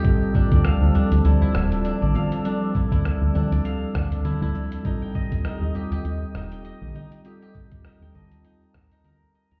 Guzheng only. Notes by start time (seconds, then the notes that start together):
Already playing: D#4 G4 D#5
0.35 D4
0.52 D5
0.65 F5
0.95 D4
1.25 E4
1.42 E4
1.85 D4
2.02 D5
2.15 F5
2.45 D4
2.75 E4
2.92 E4
3.35 D4
3.52 D5
3.65 F5
3.95 D4
4.25 E4
4.42 E4
4.85 D#4
5.02 G5
5.15 D#5
5.45 D#4
5.75 G4
5.92 G4
6.35 D#4
6.52 G5
6.65 D#5
6.95 D#4
7.25 G4
7.42 G4
7.85 D#4
8.02 G5
8.15 D#5
8.45 D#4
8.75 A#4
8.92 D#4
9.05 A#4
9.35 D#5
9.52 A#5